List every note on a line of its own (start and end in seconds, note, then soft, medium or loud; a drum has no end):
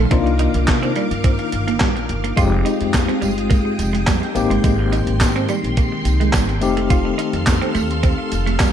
0.00 2.33 D#3 medium
0.11 0.47 C2 loud
0.11 2.33 A#3 medium
0.11 0.22 C4 medium
0.11 2.33 D4 medium
0.11 2.34 D#4 medium
0.11 2.34 F4 medium
0.11 2.36 A#4 medium
0.11 2.36 F5 medium
0.11 2.36 D6 loud
0.11 kick loud
0.11 closed hi-hat loud
0.26 muted clean electric guitar stroke soft
0.26 closed hi-hat soft
0.39 0.50 D#4 medium
0.39 closed hi-hat medium
0.54 0.66 C2 loud
0.54 closed hi-hat medium
0.68 0.91 C3 loud
0.68 muted clean electric guitar stroke soft
0.68 kick loud
0.68 snare loud
0.68 clap loud
0.68 closed hi-hat medium
0.83 0.92 C4 medium
0.83 closed hi-hat soft
0.96 1.07 G3 medium
0.96 closed hi-hat medium
1.11 1.35 G2 medium
1.11 closed hi-hat medium
1.24 1.35 C4 medium
1.24 kick loud
1.24 closed hi-hat medium
1.39 muted clean electric guitar stroke soft
1.39 closed hi-hat soft
1.52 1.77 G1 medium
1.52 closed hi-hat medium
1.68 1.77 A#3 medium
1.68 closed hi-hat medium
1.80 2.05 A#1 medium
1.80 1.91 G3 medium
1.80 kick loud
1.80 snare loud
1.80 clap medium
1.80 closed hi-hat medium
1.96 muted clean electric guitar stroke medium
1.96 closed hi-hat soft
2.09 2.33 G1 medium
2.09 closed hi-hat medium
2.24 2.33 A#3 medium
2.24 closed hi-hat medium
2.36 2.61 F1 loud
2.36 4.31 G#3 medium
2.36 6.58 G#3 medium
2.36 4.31 C4 medium
2.36 4.32 D#4 medium
2.36 2.48 F4 medium
2.36 4.34 F4 medium
2.36 4.32 G4 medium
2.36 6.58 G5 medium
2.36 4.34 D#6 loud
2.36 kick loud
2.36 closed hi-hat loud
2.36 tambourine soft
2.52 muted clean electric guitar stroke soft
2.65 2.76 D#4 medium
2.65 closed hi-hat medium
2.65 tambourine soft
2.81 3.05 F2 medium
2.81 closed hi-hat medium
2.93 muted clean electric guitar stroke soft
2.93 kick loud
2.93 snare loud
2.93 clap medium
2.93 closed hi-hat loud
2.93 tambourine medium
3.08 3.18 C4 medium
3.08 closed hi-hat soft
3.22 3.58 G1 medium
3.22 3.33 G3 medium
3.22 closed hi-hat medium
3.22 tambourine medium
3.38 closed hi-hat medium
3.50 3.61 A#3 medium
3.50 kick loud
3.50 closed hi-hat medium
3.50 tambourine soft
3.65 muted clean electric guitar stroke soft
3.79 4.03 F1 medium
3.79 closed hi-hat medium
3.79 tambourine soft
3.93 4.03 G#3 medium
3.93 closed hi-hat medium
4.07 4.20 F2 medium
4.07 4.18 G3 medium
4.07 kick loud
4.07 snare loud
4.07 clap loud
4.07 closed hi-hat medium
4.07 tambourine medium
4.22 muted clean electric guitar stroke medium
4.22 closed hi-hat soft
4.35 4.48 G#1 medium
4.35 8.73 D#3 medium
4.35 6.58 A#3 medium
4.35 6.58 C4 medium
4.35 6.58 D#4 medium
4.35 6.58 G4 loud
4.35 6.60 C6 medium
4.35 closed hi-hat medium
4.35 tambourine medium
4.50 4.61 G1 medium
4.50 4.60 G#3 medium
4.50 closed hi-hat medium
4.64 5.00 G#1 loud
4.64 4.75 G#3 medium
4.64 kick loud
4.64 closed hi-hat loud
4.64 tambourine soft
4.79 muted clean electric guitar stroke soft
4.92 5.03 D#4 medium
4.92 closed hi-hat medium
4.92 tambourine soft
5.07 5.22 G#1 medium
5.07 closed hi-hat medium
5.20 5.44 G#2 loud
5.20 muted clean electric guitar stroke soft
5.20 kick loud
5.20 snare loud
5.20 clap medium
5.20 closed hi-hat loud
5.20 tambourine medium
5.36 5.45 C4 medium
5.36 closed hi-hat soft
5.49 5.60 G3 medium
5.49 closed hi-hat medium
5.49 tambourine medium
5.64 5.87 A#1 medium
5.64 closed hi-hat medium
5.77 5.88 A#3 medium
5.77 kick loud
5.77 closed hi-hat medium
5.77 tambourine soft
5.92 muted clean electric guitar stroke soft
6.05 6.29 C2 medium
6.05 closed hi-hat medium
6.05 tambourine medium
6.20 6.30 G#3 medium
6.20 closed hi-hat medium
6.33 6.62 G#1 medium
6.33 6.45 G3 medium
6.33 kick loud
6.33 snare loud
6.33 clap medium
6.33 closed hi-hat medium
6.33 tambourine loud
6.49 muted clean electric guitar stroke soft
6.49 closed hi-hat soft
6.61 7.09 F1 medium
6.61 8.73 A3 medium
6.61 8.73 C4 medium
6.61 8.73 D#4 medium
6.61 8.73 G4 medium
6.61 8.73 A4 medium
6.61 8.73 F5 medium
6.61 8.73 C6 medium
6.61 closed hi-hat medium
6.61 tambourine medium
6.77 6.86 A3 medium
6.77 closed hi-hat medium
6.90 7.01 F4 medium
6.90 kick loud
6.90 closed hi-hat loud
6.90 tambourine soft
7.05 muted clean electric guitar stroke soft
7.18 7.29 D#4 medium
7.18 closed hi-hat medium
7.33 7.57 F2 medium
7.33 closed hi-hat medium
7.47 muted clean electric guitar stroke soft
7.47 kick loud
7.47 snare loud
7.47 clap loud
7.47 closed hi-hat loud
7.47 tambourine medium
7.62 7.71 C4 medium
7.62 closed hi-hat soft
7.75 8.11 D#2 medium
7.75 7.86 A3 medium
7.75 closed hi-hat medium
7.75 tambourine medium
7.91 closed hi-hat medium
8.03 8.14 C4 medium
8.03 kick loud
8.03 closed hi-hat medium
8.03 tambourine soft
8.18 muted clean electric guitar stroke soft
8.32 8.56 F1 medium
8.32 closed hi-hat medium
8.32 tambourine medium
8.46 8.56 A3 medium
8.46 closed hi-hat medium
8.59 8.73 F2 medium
8.59 8.70 G3 medium
8.59 kick loud
8.59 snare loud
8.59 clap loud
8.59 closed hi-hat medium
8.59 tambourine loud